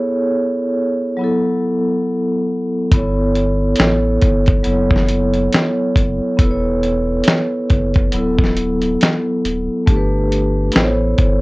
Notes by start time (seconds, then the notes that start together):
Already playing: B3 E4 A4 C#5
1.17 F#3 B3
1.21 E4 A4
2.92 G1 B3 E4 A4, kick, closed hi-hat
2.96 C#5
3.36 closed hi-hat
3.76 A1 B3, closed hi-hat
3.80 E4 A4 C#5, snare
4.22 G1, kick, closed hi-hat
4.46 kick, closed hi-hat
4.63 F#1 F#3 B3 E4, closed hi-hat
4.68 A4 C#5
4.91 kick
4.96 snare
5.09 closed hi-hat
5.34 closed hi-hat
5.53 snare, closed hi-hat
5.96 F#1, kick, closed hi-hat
6.37 E1 B3 E4, kick, closed hi-hat
6.42 A4 B4
6.51 C#5
6.83 closed hi-hat
7.24 closed hi-hat
7.28 snare
7.70 F#1, kick, closed hi-hat
7.94 kick, closed hi-hat
8.12 D1 F#3 B3, closed hi-hat
8.16 E4 A4
8.39 kick
8.44 snare
8.57 closed hi-hat
8.82 closed hi-hat
9.01 snare, closed hi-hat
9.44 D1, closed hi-hat
9.86 G1 A3 D4 G4 A4, kick, closed hi-hat
9.96 B4
10.32 closed hi-hat
10.72 A1 B3 E4 A4, closed hi-hat
10.76 C5, snare
10.83 C#5
11.18 G1, kick, closed hi-hat